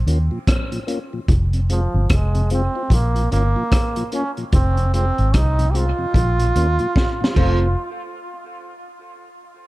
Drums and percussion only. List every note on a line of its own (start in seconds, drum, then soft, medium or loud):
0.08 closed hi-hat medium
0.47 kick loud
0.47 cross-stick loud
0.47 closed hi-hat loud
0.72 closed hi-hat soft
0.88 closed hi-hat medium
1.28 kick loud
1.28 closed hi-hat medium
1.53 closed hi-hat soft
1.70 closed hi-hat medium
2.10 kick loud
2.10 cross-stick loud
2.10 closed hi-hat medium
2.35 closed hi-hat soft
2.50 closed hi-hat medium
2.90 kick loud
2.90 closed hi-hat medium
3.16 closed hi-hat medium
3.32 closed hi-hat medium
3.72 kick loud
3.72 cross-stick loud
3.72 closed hi-hat loud
3.96 closed hi-hat medium
4.12 closed hi-hat medium
4.37 closed hi-hat soft
4.52 kick loud
4.52 closed hi-hat medium
4.77 closed hi-hat soft
4.94 closed hi-hat medium
5.18 closed hi-hat soft
5.34 kick loud
5.34 cross-stick loud
5.34 closed hi-hat loud
5.59 closed hi-hat medium
5.75 closed hi-hat medium
6.14 kick loud
6.14 closed hi-hat medium
6.40 closed hi-hat medium
6.56 closed hi-hat medium
6.79 closed hi-hat soft
6.96 kick loud
6.96 snare medium
7.24 snare medium
7.36 kick loud
7.36 crash medium